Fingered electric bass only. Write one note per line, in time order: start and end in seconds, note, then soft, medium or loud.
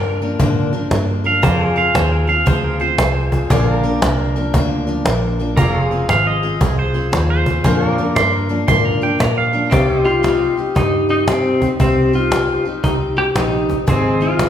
0.00 0.38 G2 medium
0.40 0.90 G#2 medium
0.91 1.42 G2 medium
1.43 1.93 F2 medium
1.95 2.45 D#2 medium
2.47 2.97 D2 medium
2.98 3.49 C2 medium
3.50 4.00 A#1 medium
4.02 4.52 C2 medium
4.54 5.04 D2 medium
5.05 5.55 A#1 loud
5.57 6.08 F1 medium
6.08 6.59 G#1 medium
6.61 7.11 C2 medium
7.12 7.63 D#2 medium
7.64 8.15 F2 medium
8.16 8.67 G2 medium
8.68 9.19 G#2 medium
9.20 9.70 A#2 loud
9.72 10.48 C2 medium
10.76 11.52 G2 medium
11.80 12.56 C2 medium
12.84 13.28 C2 medium
13.36 13.80 A#1 medium
13.88 14.49 G#1 medium